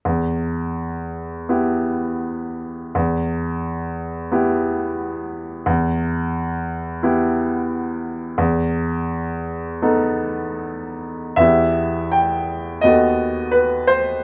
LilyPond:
\new Staff \with { instrumentName = "Grand piano" } { \time 4/4 \key e \minor \tempo 4 = 86 << { r1 | r1 | r1 | r1 |
e''4 g''4 dis''4 b'8 c''8 | } \\ { e,2 <b e' g'>2 | e,2 <b e' g'>2 | e,2 <b e' g'>2 | e,2 <b dis' a'>2 |
<e, b e' g'>2 <dis, b fis' a'>2 | } >> }